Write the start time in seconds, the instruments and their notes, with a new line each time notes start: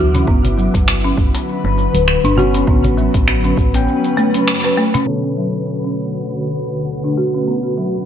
Already playing: fm bass D2, tine electric piano D3 E3 F#3, ambient pad B3 E4 F#4 D6
0.14 marimba C#4, open hi-hat, darbuka dum, cabasa
0.27 fm bass G1, ambient pad D3 F#3 B4, marimba B3, kick, cabasa
0.44 open hi-hat, darbuka dum
0.58 marimba F#3, cabasa
0.74 fm bass G1, kick, open hi-hat, darbuka ka, darbuka tek, cabasa
0.88 finger snap, cabasa
1.04 marimba C#4
1.17 fm bass G1, kick, darbuka ka, cabasa
1.35 open hi-hat, darbuka tek, cabasa
1.48 cabasa
1.64 fm bass G1, darbuka ka, darbuka tek
1.78 darbuka ka, cabasa
1.94 fm bass D1, open hi-hat, cabasa
2.08 finger snap, cabasa
2.24 fm bass G1, marimba D4, open hi-hat
2.37 tine electric piano B3 C#4 F#4, marimba F#4, darbuka dum, cabasa
2.54 marimba C#4, open hi-hat, darbuka ka, cabasa
2.67 fm bass A1, marimba B3, ambient pad C#4 B4, kick, cabasa
2.84 open hi-hat, darbuka dum
2.97 marimba F#3, cabasa
3.14 fm bass A1, kick, open hi-hat, darbuka ka, darbuka tek, cabasa
3.28 finger snap, cabasa
3.44 marimba C#4, open hi-hat
3.57 fm bass A1, kick, darbuka ka, cabasa
3.74 tine electric piano B3 C#4 G5, open hi-hat, darbuka tek, cabasa
3.87 darbuka tek, cabasa
4.04 open hi-hat
4.17 marimba A3, darbuka ka, cabasa
4.34 marimba C#4, open hi-hat, darbuka ka, cabasa
4.48 finger snap, cabasa
4.64 marimba B4, open hi-hat, darbuka ka, darbuka tek
4.77 marimba A3, cabasa
4.94 marimba C#4, open hi-hat, darbuka dum, cabasa
5.05 tine electric piano B2 D3 C#5, ambient pad D3 A3 F#4 B4, marimba B3
5.10 tine electric piano A4
5.37 marimba F#3
5.84 marimba C#4
5.98 cabasa
6.58 cabasa
7.04 marimba D4
7.18 marimba F#4, cabasa
7.34 marimba C#4, cabasa
7.47 marimba B3, cabasa
7.77 marimba F#3, cabasa
7.95 cabasa